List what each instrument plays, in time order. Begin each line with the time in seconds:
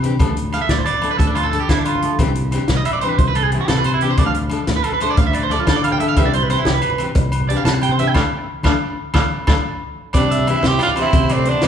Already playing: fingered electric bass C3
0.02 nylon-string guitar E3 C4 D4 G4, closed hi-hat, low conga
0.12 low conga
0.19 fingered electric bass D2, nylon-string guitar F3 A3 D4 A4, kick, closed hi-hat, high conga, low conga, low agogo
0.37 closed hi-hat
0.45 low conga
0.53 nylon-string guitar F3 A3 A4, clean electric guitar F5, snare, closed hi-hat, low agogo
0.62 clean electric guitar E5, low conga
0.69 fingered electric bass D2, clean electric guitar D5, snare, closed hi-hat, high conga, low conga
0.78 clean electric guitar C5
0.86 clean electric guitar D5, closed hi-hat, low agogo
0.93 low conga
1.01 nylon-string guitar F3 A3 D4 A4, closed hi-hat, low agogo
1.11 clean electric guitar B4
1.19 fingered electric bass D2, clean electric guitar A4, kick, closed hi-hat, high conga, low conga
1.27 clean electric guitar D4, low conga
1.35 clean electric guitar F4, closed hi-hat, low agogo
1.43 clean electric guitar A4, low conga
1.51 nylon-string guitar F3 A3 D4 A4, clean electric guitar A4, closed hi-hat, low conga
1.60 clean electric guitar G4, low conga
1.69 fingered electric bass D3, clean electric guitar E4, kick, snare, closed hi-hat, high conga, low conga, low agogo
1.78 clean electric guitar D4, low conga
1.85 clean electric guitar F4, closed hi-hat, low agogo
1.95 low conga
2.02 nylon-string guitar F3 A3 A4, closed hi-hat
2.19 fingered electric bass C2, nylon-string guitar E3 C4 D4 G4, kick, closed hi-hat, high conga, low conga, low agogo
2.35 closed hi-hat, low conga
2.45 low conga
2.51 nylon-string guitar E3 C4 D4 G4, snare, closed hi-hat, low agogo
2.61 low conga
2.68 fingered electric bass C2, snare, closed hi-hat, high conga, low conga
2.77 clean electric guitar D#5, low conga
2.85 clean electric guitar E5, closed hi-hat, low agogo
2.93 clean electric guitar D5, low conga
3.01 nylon-string guitar E3 C4 D4, clean electric guitar C5, closed hi-hat, low agogo
3.05 nylon-string guitar G4
3.10 clean electric guitar B4
3.18 fingered electric bass C2, clean electric guitar C5, kick, closed hi-hat, high conga, low conga
3.28 clean electric guitar B4
3.35 clean electric guitar A4, closed hi-hat, low conga, low agogo
3.44 clean electric guitar G#4, low conga
3.52 nylon-string guitar E3 C4 D4, muted clean electric guitar stroke, closed hi-hat
3.56 nylon-string guitar G4
3.61 clean electric guitar G#4
3.68 fingered electric bass C3, clean electric guitar A4, snare, closed hi-hat, high conga, low conga, low agogo
3.77 clean electric guitar B4, low conga
3.84 clean electric guitar C5, closed hi-hat, low agogo
3.94 clean electric guitar E4, low conga
4.01 nylon-string guitar E3 C4 D4, clean electric guitar G4, closed hi-hat, low conga
4.05 nylon-string guitar G4
4.10 clean electric guitar C5, low conga
4.17 fingered electric bass D2, nylon-string guitar F3 A3 D4, clean electric guitar D5, muted nylon-string guitar stroke, kick, closed hi-hat, high conga, low conga, low agogo
4.26 clean electric guitar F5
4.34 closed hi-hat, low conga
4.44 low conga
4.50 nylon-string guitar F3 A3 D4 A4, closed hi-hat, low agogo
4.61 low conga
4.67 fingered electric bass D2, snare, closed hi-hat, high conga, low conga
4.76 clean electric guitar B4, low conga
4.84 clean electric guitar A4, closed hi-hat, low agogo
4.92 clean electric guitar B4, low conga
5.00 nylon-string guitar F3 A3 D4 A4, clean electric guitar C5, closed hi-hat, low agogo
5.10 clean electric guitar D5
5.17 fingered electric bass D2, clean electric guitar F5, kick, closed hi-hat, high conga, low conga
5.27 clean electric guitar E5
5.33 clean electric guitar D5, closed hi-hat, low conga, low agogo
5.43 clean electric guitar C5, low conga
5.49 nylon-string guitar F3 A3 D4 A4, clean electric guitar D5, closed hi-hat
5.60 clean electric guitar F4
5.67 fingered electric bass D3, clean electric guitar A4, kick, snare, closed hi-hat, high conga, low conga, low agogo
5.75 clean electric guitar D5, low conga
5.83 clean electric guitar F5, closed hi-hat, low conga, low agogo
5.92 clean electric guitar G5, low conga
5.98 nylon-string guitar F3 A3 D4, clean electric guitar E5, closed hi-hat, low conga
6.02 nylon-string guitar A4
6.08 clean electric guitar F5, low conga
6.16 fingered electric bass C2, nylon-string guitar E3 C4 D4 G4, clean electric guitar E5, kick, closed hi-hat, high conga, low conga, low agogo
6.25 clean electric guitar D5
6.33 clean electric guitar C5, closed hi-hat, low conga
6.42 clean electric guitar B4, low conga
6.49 nylon-string guitar E3 C4 D4 G4, clean electric guitar C5, snare, closed hi-hat, low agogo
6.58 clean electric guitar E4
6.65 fingered electric bass C2, clean electric guitar G4, snare, closed hi-hat, high conga, low conga
6.73 clean electric guitar B4, low conga
6.82 closed hi-hat, low agogo
6.90 low conga
6.98 nylon-string guitar E3 C4 D4 G4, closed hi-hat, low agogo
7.15 fingered electric bass C2, kick, closed hi-hat, high conga, low conga
7.32 closed hi-hat, low conga, low agogo
7.40 low conga
7.48 nylon-string guitar E3 C4 D4 G4, clean electric guitar D5, closed hi-hat
7.57 clean electric guitar F5
7.64 fingered electric bass C3, clean electric guitar A5, snare, closed hi-hat, high conga, low conga, low agogo
7.74 muted clean electric guitar stroke, low conga
7.81 clean electric guitar G5, closed hi-hat, low conga, low agogo
7.89 clean electric guitar C5, low conga
7.96 nylon-string guitar E3 C4 D4, clean electric guitar E5, closed hi-hat, low conga
8.01 nylon-string guitar G4
8.06 clean electric guitar G5, low conga
8.14 fingered electric bass D2, nylon-string guitar F3 A3 D4, clean electric guitar A4 D5 F5, kick, snare, high conga, low agogo
8.63 fingered electric bass D2, nylon-string guitar F3 A3 D4, clean electric guitar A4 D5 F5, kick, snare, high conga, low agogo
9.14 fingered electric bass D2, nylon-string guitar F3 A3 D4, clean electric guitar A4 D5 F5, kick, snare, high conga, low agogo
9.47 fingered electric bass D2, nylon-string guitar F3 A3 D4, clean electric guitar A4 D5 F5, kick, snare, high conga, low agogo
10.13 fingered electric bass C3, nylon-string guitar C4 D4 G4, tenor saxophone D4, clean electric guitar D5, muted nylon-string guitar stroke, kick, closed hi-hat, high conga, low conga, low agogo
10.17 alto saxophone G3
10.31 clean electric guitar E5, closed hi-hat, low conga
10.39 low conga
10.47 nylon-string guitar E3 C4 D4 G4, tenor saxophone E4, closed hi-hat, low agogo
10.51 alto saxophone C4
10.56 low conga
10.63 fingered electric bass C3, clean electric guitar C5, snare, closed hi-hat, high conga, low conga
10.67 alto saxophone E4, tenor saxophone G4
10.72 low conga
10.79 tenor saxophone F4, clean electric guitar D5, closed hi-hat, low agogo
10.85 alto saxophone D4, low conga
10.95 nylon-string guitar E3 C4 D4 G4, clean electric guitar C5, closed hi-hat, low agogo
11.00 alto saxophone C4, tenor saxophone E4
11.13 fingered electric bass C3, clean electric guitar C5, kick, closed hi-hat, high conga, low conga
11.29 clean electric guitar D5, closed hi-hat, low conga, low agogo
11.34 alto saxophone A3, tenor saxophone C4
11.38 low conga
11.44 nylon-string guitar E3 C4 D4 G4, clean electric guitar C5, closed hi-hat
11.50 alto saxophone B3, tenor saxophone D4
11.61 fingered electric bass C3, clean electric guitar D5, snare, closed hi-hat, high conga, low conga, low agogo